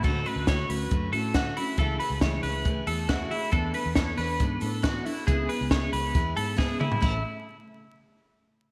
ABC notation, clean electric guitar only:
X:1
M:4/4
L:1/8
Q:1/4=138
K:A
V:1 name="Clean electric guitar"
A B c B2 A F E | A B c B2 A F E | A B c B2 A F E | G B c B2 A G E |
E z6 z |]